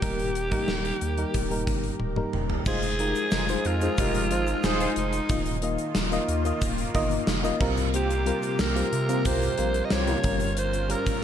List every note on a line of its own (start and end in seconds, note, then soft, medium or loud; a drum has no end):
0.00 0.50 D#1 medium
0.00 0.02 D#3 medium
0.00 2.62 D#3 medium
0.00 0.97 D#3 medium
0.00 0.51 G3 medium
0.00 0.02 A#3 medium
0.00 0.43 A#3 medium
0.00 0.02 D#4 medium
0.00 0.44 D#4 medium
0.00 2.01 G4 loud
0.00 2.62 G4 medium
0.00 0.02 A#4 medium
0.00 2.62 A#4 medium
0.00 0.44 A#4 medium
0.00 kick loud
0.00 closed hi-hat medium
0.19 closed hi-hat soft
0.35 closed hi-hat medium
0.51 1.06 G3 medium
0.51 1.07 A#3 medium
0.51 1.07 D#4 medium
0.51 1.07 A#4 medium
0.51 kick medium
0.51 closed hi-hat soft
0.68 0.92 D#1 loud
0.68 snare loud
0.85 closed hi-hat soft
1.01 1.25 D#2 medium
1.01 closed hi-hat medium
1.18 1.45 G3 medium
1.18 1.45 A#3 medium
1.18 1.46 D#4 medium
1.18 1.46 A#4 medium
1.18 closed hi-hat soft
1.34 1.69 D#1 loud
1.34 kick medium
1.34 closed hi-hat medium
1.50 2.06 G3 medium
1.50 2.06 A#3 medium
1.50 2.06 D#4 medium
1.50 2.06 A#4 medium
1.50 closed hi-hat medium
1.67 1.91 G1 medium
1.67 kick medium
1.67 closed hi-hat medium
1.84 closed hi-hat soft
2.00 2.24 D1 medium
2.00 high tom soft
2.16 2.58 G3 medium
2.16 2.58 A#3 medium
2.16 2.58 D#4 medium
2.16 2.58 A#4 medium
2.16 mid tom medium
2.33 2.57 D#1 medium
2.33 mid tom medium
2.50 floor tom medium
2.66 3.14 F1 loud
2.66 5.27 F3 medium
2.66 2.94 G#3 medium
2.66 5.27 G#3 medium
2.66 2.94 D#4 medium
2.66 5.27 D#4 medium
2.66 2.80 D#4 loud
2.66 2.79 F4 loud
2.66 2.94 F4 medium
2.66 2.79 G#4 loud
2.66 3.68 G#4 loud
2.66 2.94 C5 medium
2.66 kick loud
2.66 crash medium
2.66 shaker medium
2.82 closed hi-hat medium
2.82 shaker soft
2.99 3.40 G#3 medium
2.99 3.41 D#4 medium
2.99 3.13 D#4 medium
2.99 3.41 F4 medium
2.99 3.13 G4 medium
2.99 3.13 A#4 medium
2.99 3.41 A#4 medium
2.99 closed hi-hat medium
3.15 closed hi-hat soft
3.15 shaker soft
3.31 3.56 F1 loud
3.31 3.45 D#4 medium
3.31 3.45 F4 medium
3.31 3.45 G#4 loud
3.31 snare loud
3.31 tambourine medium
3.31 shaker medium
3.48 3.76 G#3 medium
3.48 3.76 D#4 medium
3.48 3.62 F4 medium
3.48 3.76 F4 medium
3.48 3.62 G#4 medium
3.48 3.62 C5 medium
3.48 3.77 C5 medium
3.48 closed hi-hat medium
3.48 shaker soft
3.65 3.89 F2 loud
3.65 4.66 F4 loud
3.65 closed hi-hat medium
3.81 4.23 G#3 medium
3.81 4.23 D#4 medium
3.81 3.95 D#4 medium
3.81 3.95 F4 medium
3.81 4.23 F4 medium
3.81 3.95 G#4 loud
3.81 4.23 C5 medium
3.81 closed hi-hat medium
3.81 shaker soft
3.97 4.32 F1 loud
3.97 4.25 D#4 loud
3.97 4.25 G4 loud
3.97 4.25 A#4 loud
3.97 kick medium
3.97 closed hi-hat medium
3.97 shaker medium
4.14 closed hi-hat medium
4.14 shaker soft
4.31 4.54 G#1 loud
4.31 4.72 G#3 medium
4.31 4.72 D#4 medium
4.31 4.73 F4 medium
4.31 4.73 C5 medium
4.31 closed hi-hat medium
4.47 closed hi-hat soft
4.47 shaker medium
4.63 4.88 D#1 medium
4.63 4.97 D#4 medium
4.63 4.91 F4 loud
4.63 4.91 G#4 loud
4.63 4.91 C5 loud
4.63 snare loud
4.63 tambourine medium
4.63 shaker medium
4.80 5.22 G#3 medium
4.80 5.22 D#4 medium
4.80 5.22 F4 medium
4.80 5.22 C5 medium
4.80 closed hi-hat medium
4.80 shaker medium
4.96 5.20 F1 medium
4.96 5.59 D#4 medium
4.96 closed hi-hat medium
5.13 closed hi-hat medium
5.13 shaker medium
5.29 5.77 D#1 medium
5.29 6.25 D#3 medium
5.29 7.59 D#3 medium
5.29 5.57 A#3 medium
5.29 10.20 A#3 medium
5.29 5.58 D#4 medium
5.29 7.58 F4 medium
5.29 5.58 F4 medium
5.29 5.58 D#5 medium
5.29 kick loud
5.29 closed hi-hat medium
5.29 shaker medium
5.46 closed hi-hat medium
5.46 shaker soft
5.62 6.04 A#3 medium
5.62 6.04 D#4 medium
5.62 6.04 F4 medium
5.62 6.05 D#5 medium
5.62 closed hi-hat medium
5.78 closed hi-hat soft
5.78 shaker soft
5.95 6.19 D#1 loud
5.95 snare loud
5.95 tambourine medium
5.95 shaker medium
6.12 6.40 A#3 medium
6.12 6.40 D#4 medium
6.12 6.40 F4 medium
6.12 6.40 D#5 loud
6.12 closed hi-hat medium
6.12 shaker soft
6.28 6.52 D#2 loud
6.28 closed hi-hat medium
6.45 6.86 A#3 medium
6.45 6.87 D#4 medium
6.45 6.87 F4 medium
6.45 6.87 D#5 medium
6.45 closed hi-hat medium
6.45 shaker soft
6.62 6.85 D#1 loud
6.62 kick medium
6.62 closed hi-hat medium
6.62 shaker medium
6.78 closed hi-hat medium
6.78 shaker soft
6.94 7.19 G1 medium
6.94 7.36 A#3 medium
6.94 7.36 D#4 medium
6.94 7.36 F4 medium
6.94 7.36 D#5 loud
6.94 kick medium
6.94 closed hi-hat medium
7.11 closed hi-hat soft
7.11 shaker soft
7.27 7.51 F1 loud
7.27 snare loud
7.27 tambourine medium
7.27 shaker medium
7.43 7.60 A#3 medium
7.43 7.60 D#4 medium
7.43 7.60 F4 medium
7.43 7.61 D#5 loud
7.43 closed hi-hat soft
7.43 shaker medium
7.60 8.32 C2 loud
7.60 8.56 C3 medium
7.60 10.22 C3 medium
7.60 8.15 G3 medium
7.60 8.16 C4 medium
7.60 11.24 F4 loud
7.60 8.16 F4 medium
7.60 8.16 A#4 loud
7.60 kick loud
7.60 crash medium
7.77 closed hi-hat medium
7.77 shaker medium
7.93 8.07 A#3 loud
7.93 8.07 C4 loud
7.93 8.07 G4 loud
7.93 8.62 G4 medium
7.93 closed hi-hat medium
7.93 shaker medium
8.10 closed hi-hat medium
8.10 shaker soft
8.26 8.67 G3 medium
8.26 8.68 C4 medium
8.26 8.68 F4 medium
8.26 8.40 F4 medium
8.26 8.40 G4 medium
8.26 8.40 A#4 medium
8.26 8.68 A#4 medium
8.26 closed hi-hat medium
8.42 closed hi-hat soft
8.42 shaker soft
8.59 8.83 C2 loud
8.59 8.73 A#3 medium
8.59 8.73 C4 medium
8.59 8.73 G4 loud
8.59 9.28 A#4 loud
8.59 snare loud
8.59 tambourine medium
8.59 shaker medium
8.75 9.03 G3 medium
8.75 9.03 C4 medium
8.75 9.03 F4 medium
8.75 8.89 F4 medium
8.75 9.04 G4 medium
8.75 8.89 G4 medium
8.75 8.89 C5 medium
8.75 closed hi-hat medium
8.75 shaker soft
8.93 9.27 C3 loud
8.93 closed hi-hat medium
9.08 9.50 G3 medium
9.08 9.22 A#3 medium
9.08 9.50 C4 medium
9.08 9.22 C4 medium
9.08 9.50 F4 medium
9.08 9.22 G4 loud
9.08 9.51 A#4 medium
9.08 closed hi-hat medium
9.08 shaker soft
9.25 9.49 C2 loud
9.25 9.52 F4 loud
9.25 9.52 G4 loud
9.25 9.52 A#4 loud
9.25 9.87 C5 loud
9.25 kick medium
9.25 closed hi-hat loud
9.25 shaker medium
9.42 closed hi-hat medium
9.42 shaker soft
9.58 9.82 A#1 medium
9.58 9.99 G3 medium
9.58 10.00 C4 medium
9.58 10.00 F4 medium
9.58 10.00 A#4 medium
9.58 closed hi-hat medium
9.74 closed hi-hat soft
9.74 shaker soft
9.85 9.94 D#5 medium
9.90 10.15 C2 medium
9.90 10.18 C4 loud
9.90 10.18 F4 loud
9.90 10.18 G4 loud
9.90 10.58 C#5 loud
9.90 snare loud
9.90 tambourine medium
9.90 shaker medium
10.07 10.22 G3 medium
10.07 10.24 C4 medium
10.07 10.24 F4 medium
10.07 10.24 A#4 medium
10.07 closed hi-hat medium
10.07 shaker medium
10.23 10.95 G1 medium
10.23 11.19 G2 medium
10.23 10.79 G3 medium
10.23 11.24 G3 medium
10.23 10.79 C#4 medium
10.23 11.24 C#4 medium
10.23 10.80 F4 medium
10.23 11.24 A#4 loud
10.23 10.80 A#4 medium
10.23 kick loud
10.23 closed hi-hat medium
10.40 closed hi-hat medium
10.40 shaker medium
10.57 10.93 C5 loud
10.57 closed hi-hat medium
10.57 shaker medium
10.73 closed hi-hat medium
10.73 shaker soft
10.89 11.24 G3 medium
10.89 11.24 C#4 medium
10.89 11.24 F4 medium
10.89 11.24 A#4 medium
10.89 11.24 A#4 loud
10.89 closed hi-hat medium
11.06 kick medium
11.06 closed hi-hat soft
11.06 shaker soft